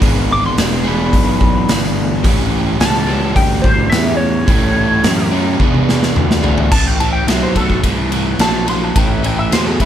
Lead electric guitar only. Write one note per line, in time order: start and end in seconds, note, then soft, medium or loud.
0.32 0.44 D6 medium
0.46 0.60 C6 loud
0.60 0.74 D6 medium
0.74 0.88 C6 loud
0.88 2.22 B5 loud
2.81 3.35 A5 loud
3.36 3.63 G5 medium
3.62 3.90 C5 medium
3.90 4.16 E5 loud
4.17 5.27 C#5 loud
6.72 6.87 A5 medium
6.87 7.00 G5 medium
7.00 7.12 A5 medium
7.13 7.27 G5 medium
7.27 7.41 E5 medium
7.43 7.56 C5 medium
7.57 7.83 A4 medium
8.41 8.67 A5 medium
8.70 8.84 C6 medium
8.84 8.98 A5 medium
8.98 9.12 G5 medium
9.12 9.26 E5 medium
9.26 9.38 G5 medium
9.39 9.52 E5 medium
9.53 9.66 C5 medium
9.66 9.79 A4 medium
9.81 9.85 E4 medium